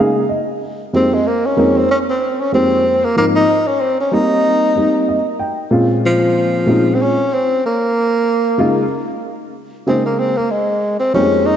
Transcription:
Already playing: upright piano C#3 G#3 A#3 F5
0.00 upright piano D#4 G#4
0.29 upright piano D#5
0.93 upright piano F2 G#3 A#3 C4 D#4 G4, tenor saxophone C4
1.14 tenor saxophone G#3
1.27 tenor saxophone A#3
1.46 tenor saxophone C#4
1.57 upright piano F2 G#3 A#3 C4 D#4 A#4
1.78 tenor saxophone C4
1.91 tenor saxophone C#4
2.10 tenor saxophone C4
2.41 tenor saxophone C#4
2.52 upright piano F2 G#3 A#3 C4 D#4 G4, tenor saxophone C4
3.04 tenor saxophone A#3
3.16 upright piano G#2 F3 A#3 C4 D#4, tenor saxophone A#3
3.35 tenor saxophone D#4
3.67 tenor saxophone C#4
3.81 tenor saxophone C4
4.00 tenor saxophone C#4
4.12 upright piano G3 A#3 C4 D#4, tenor saxophone D#4
4.76 upright piano G3 A#3 C4 D#4
5.09 upright piano D#5
5.39 upright piano G5
5.71 upright piano A#2 G#3 C4 C#4 F4
6.06 tenor saxophone F3
6.66 upright piano A#2 G#3 C4 C#4 D#4
6.95 tenor saxophone C4
7.02 tenor saxophone C#4
7.34 tenor saxophone C4
7.66 tenor saxophone A#3
8.58 upright piano C#3 G#3 A#3 D#4 F4
9.86 upright piano C#3 G#3 A#3 D#4 G#4, tenor saxophone C4
10.06 tenor saxophone A#3
10.19 tenor saxophone C4
10.37 tenor saxophone A#3
10.51 tenor saxophone G#3
11.00 tenor saxophone C4
11.14 upright piano F2 G3 A#3 D#4 G4 C5, tenor saxophone C#4
11.20 upright piano G#3
11.46 tenor saxophone D#4

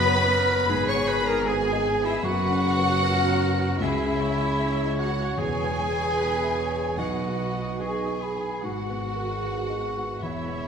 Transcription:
Already playing: double bass section F#1, felt piano F#2 B3 F#4 B4, cello section F#2, harp F#2 C#3 B3, viola section B3, french horn section B3 C#5, oboe B4, violin section B4 B5, clarinet B4
0.10 harp F#4
0.16 felt piano F#5
0.31 oboe A#4
0.43 felt piano B4
0.49 harp G#5
0.68 double bass section G#1, cello section G#2, harp G#2, felt piano G#2, oboe G#4, french horn section G#4
0.88 harp D#3, violin section C#5 C#6, clarinet C#5, viola section C#5
0.95 felt piano B3
1.08 harp B3, clarinet B4, violin section B4 B5, viola section B4
1.22 felt piano A#4
1.27 harp D#4, violin section A#4 A#5, clarinet A#4, viola section A#4
1.46 violin section G#4 G#5, clarinet G#4, viola section G#4, felt piano B4
1.65 harp G#4
1.73 felt piano D#5
1.84 harp D#5
1.98 felt piano B4
2.03 violin section E4 E5, clarinet E4, viola section E4, harp A#5
2.22 double bass section F#1, harp F#2, felt piano F#2, cello section F#2, french horn section B3 C#4, violin section F#4 F#5, clarinet F#4, viola section F#4, oboe B4
2.42 harp C#3
2.50 felt piano C#4
2.62 harp C#4
2.77 felt piano B4
3.03 oboe A#4, felt piano C#5
3.29 felt piano F#5
3.55 felt piano C#5
3.60 harp B5
3.80 felt piano C#2, cello section C#2, double bass section C#2, harp C#3, french horn section C#4 G#4, violin section E4 E5, clarinet E4, viola section E4, oboe G#4
4.00 harp G#3
4.07 felt piano C#4
4.20 harp C#4, oboe C#5
4.32 felt piano G#4
4.40 harp E4
4.59 harp G#4, felt piano C#5
4.85 felt piano D#5
4.99 clarinet F#4, violin section F#4 F#5, viola section F#4
5.11 felt piano C#5
5.19 harp G#5
5.37 double bass section E1, felt piano E2, cello section E2, timpani E2, harp E3, french horn section B3 B4, violin section G#4 G#5, clarinet G#4, viola section G#4
5.58 harp B3
5.63 felt piano B3
5.90 felt piano G#4
6.17 felt piano B4, oboe B4
6.39 harp E5
6.44 felt piano E5
6.59 oboe C#5
6.71 felt piano B4
6.97 felt piano B1, double bass section B1, cello section B2, harp B2, timpani B2, french horn section B3 B4, clarinet F#4, violin section F#4 F#5, viola section F#4, oboe D#5
7.20 harp F#3
7.25 felt piano B3
7.53 felt piano B4
7.61 harp D#4
7.80 french horn section B3 B4, felt piano D#4, violin section G#4 G#5, clarinet G#4, viola section G#4, flute C#6
8.02 harp D#4
8.07 felt piano D#5
8.23 harp D#5, flute B5
8.35 felt piano B4
8.63 double bass section G#1, felt piano G#2, cello section G#2, harp G#2, french horn section B3 G#4, viola section F#4, clarinet F#4, violin section F#4 F#5
8.84 harp D#3
8.89 felt piano B3
9.04 harp B3
9.16 felt piano A#4
9.24 harp D#4
9.44 felt piano B4
9.70 felt piano D#5
9.83 harp D#5
9.96 felt piano B4
10.03 harp A#5
10.23 double bass section E1, felt piano E2, harp E2, cello section E2, viola section E4, clarinet E4, violin section E4 E5, french horn section G#4, oboe C#5
10.43 harp B2
10.49 felt piano B3

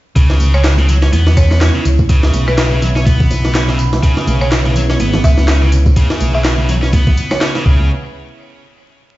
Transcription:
0.16 fingered electric bass C#2, distorted electric guitar C#3, analog synth pad C#3 B3 E4, kick, closed hi-hat, tambourine
0.30 snare, tambourine, high bongo
0.40 closed hi-hat, tambourine, high conga
0.54 distorted electric guitar C#3, marimba C#5, tambourine
0.64 distorted electric guitar C#3, snare, clap, closed hi-hat, tambourine
0.78 distorted electric guitar C#3, closed hi-hat, tambourine, high bongo, high conga
0.89 distorted electric guitar F#3, closed hi-hat, tambourine, low conga
1.02 distorted electric guitar C#4, snare, tambourine
1.12 fingered electric bass E2, distorted electric guitar B3, closed hi-hat, tambourine, high bongo, high conga
1.27 snare, tambourine, low conga
1.37 marimba C#5, kick, closed hi-hat, tambourine
1.51 marimba C#5, snare, tambourine, high conga
1.61 distorted electric guitar C#4, snare, clap, closed hi-hat, tambourine, high bongo
1.75 distorted electric guitar C#3, tambourine
1.85 fingered electric bass C#2, closed hi-hat, tambourine
1.99 kick, tambourine, high bongo, high conga
2.09 distorted electric guitar C#3, kick, closed hi-hat, tambourine
2.23 snare, tambourine
2.34 fingered electric bass B1, closed hi-hat, tambourine, high conga
2.47 distorted electric guitar C#3, marimba B4, tambourine, high bongo
2.57 distorted electric guitar C#3, marimba B4, snare, clap, closed hi-hat, tambourine
2.71 distorted electric guitar C#3, tambourine, high conga
2.82 distorted electric guitar F#3, closed hi-hat, tambourine, high bongo, low conga
2.96 distorted electric guitar C#4, snare, tambourine
3.06 distorted electric guitar B3, kick, closed hi-hat, tambourine, high conga
3.20 kick, tambourine, low conga
3.30 fingered electric bass B1, closed hi-hat, tambourine, high bongo
3.44 snare, tambourine, high conga
3.54 distorted electric guitar C#4, snare, clap, closed hi-hat, tambourine
3.68 distorted electric guitar C#3, snare, tambourine, high bongo
3.79 closed hi-hat, tambourine
3.93 snare, tambourine, high conga
4.03 distorted electric guitar C#3, kick, closed hi-hat, tambourine
4.17 snare, tambourine, high bongo
4.27 fingered electric bass B1, closed hi-hat, tambourine, high conga
4.41 distorted electric guitar C#3, marimba C#5, tambourine
4.52 distorted electric guitar C#3, snare, clap, closed hi-hat, tambourine, high bongo
4.64 distorted electric guitar C#3, closed hi-hat, tambourine, high conga
4.75 distorted electric guitar F#3, closed hi-hat, tambourine, low conga
4.90 distorted electric guitar C#4, snare, tambourine
5.00 fingered electric bass G#1, distorted electric guitar B3, closed hi-hat, tambourine, high bongo, high conga
5.13 snare, tambourine, low conga
5.24 fingered electric bass C#2, marimba E5, kick, closed hi-hat, tambourine
5.38 snare, tambourine, high bongo, high conga
5.48 distorted electric guitar C#4, snare, clap, closed hi-hat, tambourine
5.62 distorted electric guitar C#3, tambourine
5.72 closed hi-hat, tambourine
5.86 kick, tambourine, high bongo, high conga
5.96 distorted electric guitar C#3, kick, closed hi-hat, tambourine
6.10 snare, tambourine
6.20 fingered electric bass B1, closed hi-hat, tambourine, high bongo, high conga
6.34 distorted electric guitar C#3, marimba E5, tambourine
6.45 distorted electric guitar C#3, snare, clap, closed hi-hat, tambourine
6.58 distorted electric guitar C#3, tambourine, high conga
6.69 distorted electric guitar F#3, closed hi-hat, tambourine, high bongo, low conga
6.82 distorted electric guitar C#4, snare, tambourine
6.93 distorted electric guitar B3, kick, closed hi-hat, tambourine, high conga
7.07 kick, tambourine, high bongo, low conga
7.17 closed hi-hat, tambourine
7.31 marimba C#5, snare, tambourine, high conga
7.41 distorted electric guitar C#4, snare, clap, closed hi-hat, tambourine
7.55 distorted electric guitar C#3, snare, tambourine, high bongo
7.66 fingered electric bass C#2, distorted electric guitar C#3, kick
7.80 high conga

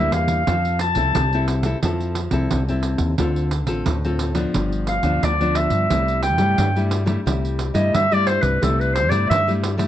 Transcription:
Already playing: nylon-string guitar G2 G3 A#3, clarinet E5
0.00 nylon-string guitar E4
0.12 fretless electric bass E2, clarinet F5, pandeiro
0.28 pandeiro
0.47 fretless electric bass F2, nylon-string guitar F3 C4 A4, pandeiro
0.65 pandeiro
0.79 clarinet A5, pandeiro
0.95 fretless electric bass C2, nylon-string guitar C4 E4 A4, pandeiro
1.15 fretless electric bass C2, nylon-string guitar C3, pandeiro
1.33 nylon-string guitar C4 E4 A4, pandeiro
1.48 pandeiro
1.63 nylon-string guitar C4 E4 A4, pandeiro
1.83 fretless electric bass F2, nylon-string guitar F3 C4 E4 A4, pandeiro
2.00 pandeiro
2.15 pandeiro
2.31 fretless electric bass C2, nylon-string guitar C4 E4 A4, pandeiro
2.51 fretless electric bass C2, nylon-string guitar C3, pandeiro
2.68 nylon-string guitar C4 E4 A4, pandeiro
2.83 pandeiro
2.98 fretless electric bass D#2, pandeiro
3.18 fretless electric bass D2, nylon-string guitar D3 C4 F4 A4, pandeiro
3.36 pandeiro
3.51 pandeiro
3.67 fretless electric bass A1, nylon-string guitar C4 F4 A4, pandeiro
3.86 fretless electric bass D2, nylon-string guitar A2, pandeiro
4.05 nylon-string guitar C4 F4 A4, pandeiro
4.19 pandeiro
4.35 nylon-string guitar F3 B3 D4, pandeiro
4.54 fretless electric bass G1, nylon-string guitar G2, pandeiro
4.72 pandeiro
4.87 clarinet F5, pandeiro
5.03 fretless electric bass D2, nylon-string guitar F3 B3 D4, pandeiro
5.23 fretless electric bass D2, nylon-string guitar D3, clarinet D5, pandeiro
5.40 nylon-string guitar F3 B3 D4, pandeiro
5.55 clarinet E5, pandeiro
5.70 fretless electric bass G2, pandeiro
5.90 fretless electric bass C2, nylon-string guitar C3 G3 A3 E4, pandeiro
6.08 pandeiro
6.23 clarinet G5, pandeiro
6.38 fretless electric bass G2, nylon-string guitar G3 A3 E4, pandeiro
6.58 fretless electric bass G2, nylon-string guitar G2, pandeiro
6.76 nylon-string guitar G3 A3 E4, pandeiro
6.91 pandeiro
7.06 nylon-string guitar G3 A3 E4, pandeiro
7.26 fretless electric bass C2, nylon-string guitar C3 G3 A3 E4, pandeiro
7.45 pandeiro
7.59 pandeiro
7.74 fretless electric bass G2, nylon-string guitar G3 A3 E4, clarinet D#5, pandeiro
7.93 nylon-string guitar G2, fretless electric bass G2, clarinet E5, pandeiro
8.11 nylon-string guitar G3 A3 E4, clarinet D5, pandeiro
8.27 clarinet C5, pandeiro
8.42 fretless electric bass C2, clarinet B4, pandeiro
8.61 fretless electric bass C2, nylon-string guitar C3 G3 A3 E4, clarinet A4, pandeiro
8.80 clarinet B4, pandeiro
8.94 clarinet C5, pandeiro
9.10 fretless electric bass G2, nylon-string guitar G3 A3 E4, clarinet D5, pandeiro
9.30 nylon-string guitar G2, fretless electric bass G2, clarinet E5, pandeiro
9.48 nylon-string guitar G3 A3 E4, pandeiro
9.64 pandeiro
9.78 nylon-string guitar G3 A3 E4, pandeiro

